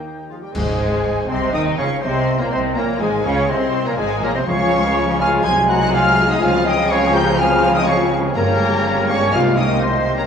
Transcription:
Already playing: D#2 D#4 G4 G5 A#5
0.29 F3 F4 G#4 F5
0.41 G3 G4 A#4 G5
0.53 G#1 G#2 G#3 G#4 C5 G#5, concert bass drum, crash
1.27 C2 C3 C4 C5 D#5 C6
1.52 D#2 D#3 D#4 D#5 G5 D#6
1.77 C#2 C#3 C#4 C#5 F5 C#6
2.01 C2 C3 C4 C5 D#5 C6
2.38 A#2 A#3 A#4 C#5 A#5
2.50 C2 C3 C4 C5 D#5 C6
2.74 A#1 A#2 A#3 A#4 C#5 A#5
2.99 G#1 G#2 G#3 G#4 C5 G#5
3.23 C#2 C#3 C#4 C#5 F5 C#6
3.48 C2 C3 C4 C5 D#5 C6
3.85 A#2 A#3 A#4 C#5 A#5
3.96 G#1 G#2 G#3 G#4 C5 G#5
4.20 A#1 A#2 A#3 A#4 C#5 A#5
4.34 C3 C4 C5 D#5 C6
4.46 C#2 C#3 F3 G#3 C#4 G#4 C#5 F5 C#6
5.19 F4 F5 G#5 F6
5.44 C2 C3 F#3 D#4 G#4 G#5 C6 G#6
5.69 F#4 F#5 A#5 F#6
5.93 F4 F5 G#5 F6
6.28 D#4 D#5 F#5 D#6
6.40 C#2 C#3 F3 C4 F4 F5 G#5 F6
6.65 D#4 D#5 G5 D#6
6.90 C#4 C#5 F5 C#6
7.14 G4 G5 A#5 G6
7.38 F4 F5 G#5 F6
7.75 D#4 D#5 G5 D#6
7.86 C#4 C#5 F5 C#6
8.34 G1 G2 C#3 G3 A#3 C#4 G4 A#4 C#5 A#5
9.09 C#4 C#5 F5 C#6
9.32 C2 C3 D#3 C4 D#4 F4 F5 G#5 F6
9.56 D#4 D#5 G5 D#6
9.80 C4 C5 D#5 C6
10.17 A#3 A#4 C#5 A#5

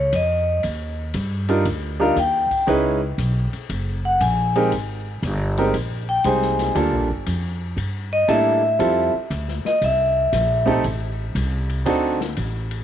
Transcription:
Already playing: C#2 C#5
0.13 F2 D#5, hi-hat pedal, ride
0.63 D#2, ride
1.14 G2, hi-hat pedal, ride
1.48 G3 D4 D#4 F4 A#4, ride
1.65 D2, ride
2.00 G3 D4 D#4 F4 A#4 F5
2.16 D#2 G5, hi-hat pedal, ride
2.51 muted upright bass stroke, kick, ride
2.67 C#2 G#3 C#4 D#4 E4 B4, ride
3.18 B1, hi-hat pedal, ride
3.53 muted upright bass stroke, ride
3.69 F#1, ride
4.05 F#5
4.20 A#1 G#5, hi-hat pedal, ride
4.55 G#3 C4 D#4 G4 A#4, ride
4.72 G#1, ride
5.22 G1, hi-hat pedal, ride
5.58 G#3 C4 D#4 G4 A#4, ride
5.74 A#1, ride
6.09 G5
6.24 C2 G3 G#3 C4 D#4 C5 G#5, hi-hat pedal, ride
6.42 snare
6.59 snare, ride
6.74 D2 G3 A#3 D4 F4 A4, ride
6.92 A#1
7.10 G1
7.26 F2, hi-hat pedal, ride
7.77 G2, ride
8.13 D#5
8.28 A2 G3 A#3 D4 E4 A4 E5, hi-hat pedal, ride
8.79 F2 G3 C4 E4 F4 A4, ride
9.14 muted upright bass stroke
9.30 D2, hi-hat pedal, ride
9.48 snare
9.65 D#5, muted upright bass stroke, snare
9.81 C2 E5, ride
10.33 A#1, snare, hi-hat pedal, ride
10.66 A3 C4 D#4 G4 A4, kick, ride
10.84 A1, ride
11.35 C2, hi-hat pedal, ride
11.69 ride
11.86 D2 C4 D4 D#4 F#4 A4, ride
12.21 snare
12.37 A1, hi-hat pedal, ride
12.71 ride

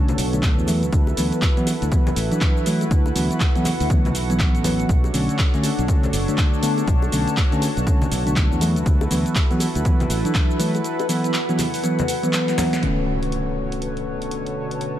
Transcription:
Already playing: D3 A3 C#4 D4 F#4 A4 B4 C#5 A5
0.08 closed hi-hat, high conga, cabasa
0.18 B1, open hi-hat, cabasa
0.33 D3 A3 D4, closed hi-hat, cabasa
0.43 kick, clap, closed hi-hat, cabasa
0.58 E2, cabasa
0.67 E3 F#3 A3 E4 B4, open hi-hat, high bongo, cabasa
0.83 D2, closed hi-hat, cabasa
0.93 D2, kick, closed hi-hat, cabasa
1.07 high bongo, cabasa
1.17 D2 E3 F#3 B3, open hi-hat, cabasa
1.32 closed hi-hat, cabasa
1.42 kick, clap, closed hi-hat, cabasa
1.57 E3 F#3 B3, closed hi-hat, cabasa
1.67 open hi-hat, high bongo, cabasa
1.79 D2 F#5, closed hi-hat
1.83 cabasa
1.91 E3 F#3 B3, kick, closed hi-hat, cabasa
2.07 closed hi-hat, high conga, cabasa
2.16 A1, open hi-hat, cabasa
2.31 E3 F#3 D4, closed hi-hat, cabasa
2.41 kick, clap, closed hi-hat, cabasa
2.57 cabasa
2.66 E3 F#3 A3, open hi-hat, cabasa
2.81 closed hi-hat, high bongo, cabasa
2.91 D2, kick, closed hi-hat, cabasa
3.06 high bongo, cabasa
3.15 D2 E3 F#3 B3, open hi-hat, cabasa
3.31 closed hi-hat, cabasa
3.40 kick, clap, closed hi-hat, cabasa
3.55 E3 F#3 B3, closed hi-hat, cabasa
3.65 clap, open hi-hat, high bongo, high conga, cabasa
3.80 D2, open hi-hat, cabasa
3.90 E3 F#3 B3, kick, closed hi-hat, cabasa
4.05 closed hi-hat, high conga, cabasa
4.15 B1, open hi-hat, cabasa
4.30 E3 F#3 B3, closed hi-hat, cabasa
4.40 kick, clap, closed hi-hat, cabasa
4.55 A1, closed hi-hat, cabasa
4.64 E3 F#3 B3, open hi-hat, high bongo, low conga, cabasa
4.80 closed hi-hat, cabasa
4.89 B1 D4 A4 C#5, kick, closed hi-hat, cabasa
5.04 high bongo, cabasa
5.14 B1 D3 A3 C#4, open hi-hat, cabasa
5.29 closed hi-hat, cabasa
5.39 kick, clap, closed hi-hat, cabasa
5.45 B4
5.54 D3 A3 C#4, closed hi-hat, cabasa
5.63 open hi-hat, high bongo, cabasa
5.73 A5
5.79 B1, closed hi-hat, cabasa
5.88 D3 A3 C#4, kick, closed hi-hat, cabasa
6.03 closed hi-hat, high conga, cabasa
6.13 F#1, open hi-hat, cabasa
6.28 D3 A3 D4, closed hi-hat, cabasa
6.38 kick, clap, closed hi-hat, cabasa
6.54 cabasa
6.63 D3 A3 B3, open hi-hat, cabasa
6.77 closed hi-hat, high bongo, cabasa
6.87 B1, kick, closed hi-hat, cabasa
7.02 high bongo, cabasa
7.12 B1 D3 A3 C#4, open hi-hat, cabasa
7.27 closed hi-hat, cabasa
7.37 kick, clap, closed hi-hat, cabasa
7.52 D3 A3 C#4, closed hi-hat, cabasa
7.62 open hi-hat, high bongo, cabasa
7.77 B1, closed hi-hat, cabasa
7.87 D3 A3 C#4, kick, closed hi-hat, cabasa
8.02 closed hi-hat, high conga, cabasa
8.12 B1, open hi-hat, cabasa
8.26 D3 A3 D4, closed hi-hat, cabasa
8.36 kick, clap, closed hi-hat, cabasa
8.52 E2, cabasa
8.61 E3 F#3 A3 E4 A4 B4, open hi-hat, high bongo, cabasa
8.76 D2, closed hi-hat, cabasa
8.86 D2, kick, closed hi-hat, cabasa
9.01 high bongo, cabasa
9.10 D2 E3 F#3 B3, open hi-hat, cabasa
9.26 closed hi-hat, cabasa
9.35 kick, clap, closed hi-hat, cabasa
9.50 E3 F#3 B3, closed hi-hat, cabasa
9.60 open hi-hat, high bongo, cabasa
9.75 D2, closed hi-hat, cabasa
9.85 E3 F#3 B3, kick, closed hi-hat, cabasa
10.00 F#5, closed hi-hat, high conga, cabasa
10.10 A1, open hi-hat, cabasa
10.25 E3 F#3 D4, closed hi-hat, cabasa
10.35 kick, clap, closed hi-hat, cabasa
10.51 cabasa
10.59 E3 F#3 A3, open hi-hat, cabasa
10.75 closed hi-hat, high bongo, cabasa
10.84 closed hi-hat, cabasa
10.99 closed hi-hat, high bongo, cabasa
11.09 E3 F#3 B3, open hi-hat, cabasa
11.24 closed hi-hat, cabasa
11.34 clap, closed hi-hat, cabasa
11.49 E3 F#3 B3, closed hi-hat, cabasa
11.58 clap, open hi-hat, high bongo, high conga, cabasa
11.74 open hi-hat, cabasa
11.83 E3 F#3 B3, closed hi-hat, cabasa
11.99 closed hi-hat, high conga, cabasa
12.08 open hi-hat, cabasa
12.23 E3 F#3 B3, closed hi-hat, cabasa
12.33 snare, clap, closed hi-hat, cabasa
12.48 snare, closed hi-hat, cabasa
12.58 E3 F#3 B3, snare, open hi-hat, high bongo, low conga, cabasa
12.73 snare, closed hi-hat, cabasa
12.82 B2 D3 A3 C#4 F#4 A4 C#5, closed hi-hat, impact
13.05 A5
13.23 closed hi-hat
13.32 closed hi-hat
13.72 closed hi-hat
13.82 closed hi-hat
13.97 closed hi-hat
14.22 closed hi-hat
14.31 closed hi-hat
14.46 closed hi-hat
14.71 closed hi-hat
14.81 closed hi-hat

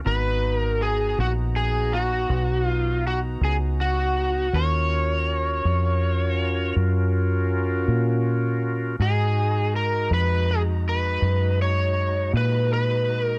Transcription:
0.05 G#1 B3 D#4 F#4 B4 A#5
0.60 A#4
0.82 G#4
1.18 A#1 F#4
1.56 G#4
1.93 F#4
2.30 B1
2.69 F4
3.07 F#4
3.41 C#2 G#4
3.81 F#4
4.53 D#2 C#4 F4 F#4 A#4 C#5
5.65 F2
6.76 F#2
7.88 A#2
9.00 G#2 G#3 D#4 F#4 G#4 A#5
9.76 A#4
10.11 F2 B4
10.51 G#4
10.89 B4
11.22 F#2
11.62 C#5
12.33 A#2 B4
12.73 B4
13.25 A#4

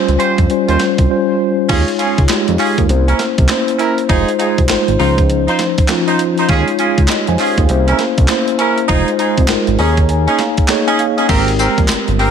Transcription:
Already playing: G3 C#4 F4 C5
0.08 C#2, closed hi-hat
0.19 C#4 F4 G4 C5, closed hi-hat
0.38 F2, kick, closed hi-hat
0.50 G3 C#4 F4 C5, closed hi-hat
0.68 D#2 C#4 F4 G4 C5, closed hi-hat
0.79 snare, closed hi-hat
0.98 C2, kick, closed hi-hat
1.10 G3 C#4 F4 C5
1.69 D#2 G#3 C#4 D#4 F4 G#4 C#5, kick, closed hi-hat, crash
1.88 closed hi-hat
1.99 C#4 F4 G#4, closed hi-hat
2.18 C#2, kick, closed hi-hat
2.29 G#3 D#4 F4 G4, snare, clap, closed hi-hat
2.48 F2, closed hi-hat
2.59 C#4 F4 G#4, clap, open hi-hat
2.78 D#2, kick, closed hi-hat
2.89 C2 A#3 C#4 E4 C5, closed hi-hat
3.07 C#4 E4 A#4, closed hi-hat
3.19 snare, closed hi-hat
3.38 C2, kick, closed hi-hat
3.48 A#3 C#4 E4 C5, snare, clap, closed hi-hat
3.68 closed hi-hat
3.79 C#4 E4 A#4, closed hi-hat
3.98 closed hi-hat
4.09 F1 G#3 D#4 F4 G#4 C5, kick, closed hi-hat
4.29 closed hi-hat
4.39 D#4 F4 G#4, closed hi-hat
4.58 C2, kick, closed hi-hat
4.69 G#1 G#3 D#4 F4 C5, snare, clap, closed hi-hat
4.88 G#1, closed hi-hat
4.99 C#2 F3 C#4 D#4 F4 C5, open hi-hat
5.18 kick, closed hi-hat
5.30 closed hi-hat
5.48 D#4 F4 C5, closed hi-hat
5.59 snare, closed hi-hat
5.78 kick, closed hi-hat
5.88 F3 C#4 D#4 F4, snare, clap, closed hi-hat
6.07 D#4 F4 C5, closed hi-hat
6.19 closed hi-hat
6.38 D#4 F4 C5, closed hi-hat
6.49 D#2 G#3 C#4 D#4 F4 G#4 C#5, kick, closed hi-hat
6.68 closed hi-hat
6.79 C#4 F4 G#4, closed hi-hat
6.98 C#2, kick, closed hi-hat
7.08 G4 D#5, snare, clap, closed hi-hat
7.27 F2 C5 G#5, closed hi-hat
7.39 C#4 F4 G#4, clap, open hi-hat
7.58 D#2 G#4 F5, kick, closed hi-hat
7.69 C2 A#3 C#4 E4 C5, closed hi-hat
7.88 C#4 E4 A#4, closed hi-hat
7.99 snare, closed hi-hat
8.18 C2, kick, closed hi-hat
8.28 A#3 C#4 E4 C5, snare, clap, closed hi-hat
8.48 closed hi-hat
8.59 C#4 E4 A#4, closed hi-hat
8.78 closed hi-hat
8.88 F1 G#3 D#4 F4 G#4 C5, kick, closed hi-hat
9.08 closed hi-hat
9.19 D#4 F4 G#4, closed hi-hat
9.37 C2, kick, closed hi-hat
9.48 G#1 G#3 D#4 F4 A#4, snare, clap, closed hi-hat
9.67 G#1, closed hi-hat
9.78 D#2 A#3 C#4 D#4 G#4 C#5 A#5, open hi-hat
9.97 kick, closed hi-hat
10.09 G#5, closed hi-hat
10.27 C#4 D#4 G#4, closed hi-hat
10.39 F5, snare, closed hi-hat
10.57 kick, closed hi-hat
10.68 A#3 D#4 G#4 C#5 D#5, snare, clap, closed hi-hat
10.87 C#4 D#4 G#4, closed hi-hat
10.99 F5, closed hi-hat
11.17 C#4 D#4 G#4, closed hi-hat
11.29 G#1 G#3 A#3 C4 G4 A#4, kick, closed hi-hat, crash, tambourine
11.36 C4
11.48 closed hi-hat
11.59 C4 G4 A#4, closed hi-hat, tambourine
11.78 A#1, kick, closed hi-hat
11.88 G1, snare, clap, closed hi-hat, tambourine
12.08 G1, closed hi-hat
12.19 C4 G4 A#4, open hi-hat

